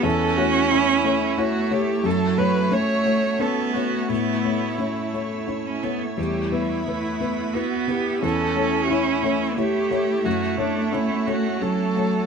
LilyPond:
<<
  \new Staff \with { instrumentName = "Viola" } { \time 3/4 \key a \mixolydian \tempo 4 = 88 a'8 fis'8 e'4 fis'8 g'8 | a'8 b'8 cis''4 a'8 fis'8 | e'2~ e'8 r8 | g'8 e'4. fis'8 g'8 |
a'4 e'4 g'4 | fis'8 d'8 e'8 fis'8 a'4 | }
  \new Staff \with { instrumentName = "Ambient pad" } { \time 3/4 \key a \mixolydian << { <a cis''>2.~ | <a cis''>2.~ | <a cis''>2. | <b b'>2. |
<a cis''>2.~ | <a cis''>2. | } \\ { e'2. | fis'2. | e'2.~ | e'2.~ |
e'2. | fis'2. | } >> }
  \new Staff \with { instrumentName = "Felt piano" } { \time 3/4 \key a \mixolydian e,8 <a cis''>8 <e' cis''>8 <a cis''>8 <e' cis''>8 <a cis''>8 | fis,8 <a cis''>8 <cis' cis''>8 <a cis''>8 <cis' cis''>8 <a cis''>8 | a,8 <a cis''>8 <cis' cis''>8 <a cis''>8 <cis' cis''>8 <a cis''>8 | e,8 <b b'>8 <e' b'>8 <b b'>8 <e' b'>8 <b b'>8 |
e,8 <a cis''>8 <e' cis''>8 <a cis''>8 <e' cis''>8 <a cis''>8 | fis,8 <a cis''>8 <cis' cis''>8 <a cis''>8 <cis' cis''>8 <a cis''>8 | }
  \new Staff \with { instrumentName = "Cello" } { \time 3/4 \key a \mixolydian cis'2 a4 | fis4 a4 b4 | b4 a4~ a16 cis'16 b16 a16 | g4 a4 b4 |
cis'2 a4 | a2 fis4 | }
>>